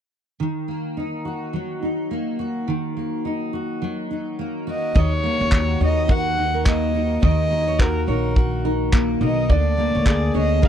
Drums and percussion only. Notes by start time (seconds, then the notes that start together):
4.96 kick
5.52 kick, clap
6.09 kick
6.66 kick, clap
7.23 kick
7.79 kick, clap
8.36 kick
8.93 kick, clap
9.50 kick
10.06 kick, clap
10.63 kick